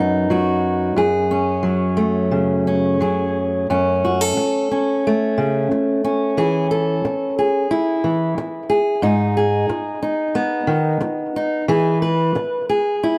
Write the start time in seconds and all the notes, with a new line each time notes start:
Already playing: F#2 F#3 B3 G#4
0.00 D#4
0.30 F#3 F#4
0.96 F#2 G#4
1.31 C#4
1.63 F#3
1.97 A3
2.31 C#3
2.67 C#4
3.01 F#3 G#4
3.70 F#2 C#4
4.05 F#4
4.21 A4
4.37 muted steel-string acoustic guitar stroke
4.71 C#4
5.07 A3
5.38 C#3
5.71 muted steel-string acoustic guitar stroke
6.04 C#4
6.37 E3 G#4
6.71 A4
7.05 muted steel-string acoustic guitar stroke
7.39 G#4
7.71 E4
8.04 E3
8.38 muted steel-string acoustic guitar stroke
8.70 G#4
9.02 G#2 D#4
9.37 G#4
9.69 muted steel-string acoustic guitar stroke
10.03 D#4
10.35 B3
10.67 D#3
11.01 muted steel-string acoustic guitar stroke
11.36 D#4
11.68 E3 G#4
12.02 B4
12.35 muted steel-string acoustic guitar stroke
12.69 G#4
13.03 E4